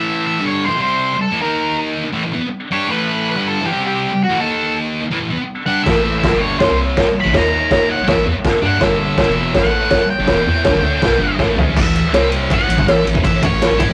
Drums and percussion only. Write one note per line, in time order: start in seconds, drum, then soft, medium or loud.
5.86 kick loud
5.86 snare loud
5.86 crash medium
6.24 kick loud
6.24 snare loud
6.24 crash medium
6.60 kick loud
6.60 snare loud
6.60 crash medium
6.97 kick loud
6.97 snare loud
6.97 crash medium
7.34 kick loud
7.34 snare loud
7.34 crash medium
7.71 kick loud
7.71 snare loud
7.71 crash medium
8.08 kick loud
8.08 snare loud
8.08 crash medium
8.45 kick loud
8.45 snare loud
8.45 crash medium
8.80 kick loud
8.80 snare loud
8.80 crash medium
9.18 kick loud
9.18 snare loud
9.18 crash medium
9.54 kick loud
9.54 snare loud
9.54 crash medium
9.90 kick loud
9.90 snare loud
9.90 crash medium
10.27 kick loud
10.27 snare loud
10.27 crash medium
10.64 kick loud
10.64 snare loud
10.64 crash medium
11.02 kick loud
11.02 snare loud
11.02 crash medium
11.39 kick loud
11.39 snare medium
11.58 floor tom medium
11.77 kick loud
11.77 crash loud
11.95 ride medium
12.14 snare loud
12.14 ride loud
12.32 ride medium
12.50 kick loud
12.50 ride medium
12.70 ride medium
12.78 kick medium
12.88 snare loud
12.88 ride loud
13.07 ride medium
13.15 kick loud
13.24 kick loud
13.24 ride loud
13.43 kick loud
13.43 ride medium
13.62 snare loud
13.62 ride loud
13.80 kick loud
13.80 ride medium